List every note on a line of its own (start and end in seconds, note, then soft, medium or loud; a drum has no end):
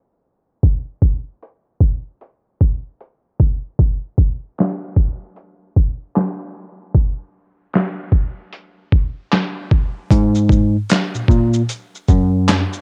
0.63 kick medium
0.63 closed hi-hat soft
1.02 kick medium
1.43 closed hi-hat medium
1.81 kick medium
2.21 closed hi-hat medium
2.61 kick medium
3.01 closed hi-hat medium
3.40 kick medium
3.79 kick loud
3.79 closed hi-hat medium
4.18 kick medium
4.58 snare medium
4.58 clap medium
4.58 closed hi-hat medium
4.96 kick medium
5.36 closed hi-hat medium
5.76 kick medium
6.16 snare medium
6.16 clap medium
6.16 closed hi-hat medium
6.95 kick medium
6.95 closed hi-hat soft
7.74 snare medium
7.74 clap medium
7.74 closed hi-hat medium
8.12 kick medium
8.53 closed hi-hat medium
8.92 kick medium
9.32 snare medium
9.32 clap medium
9.32 closed hi-hat medium
9.71 kick medium
10.10 10.75 G#2 loud
10.10 kick loud
10.10 closed hi-hat medium
10.10 shaker medium
10.35 shaker soft
10.49 kick medium
10.49 shaker soft
10.89 snare loud
10.89 clap medium
10.89 closed hi-hat medium
10.89 shaker medium
11.14 11.21 A#2 medium
11.14 shaker medium
11.28 11.61 A#2 medium
11.28 kick medium
11.28 shaker soft
11.53 shaker medium
11.69 closed hi-hat medium
11.69 shaker medium
11.95 shaker soft
12.08 12.61 F#2 medium
12.08 kick medium
12.08 shaker soft
12.48 snare loud
12.48 clap medium
12.48 closed hi-hat medium
12.48 shaker medium
12.73 shaker soft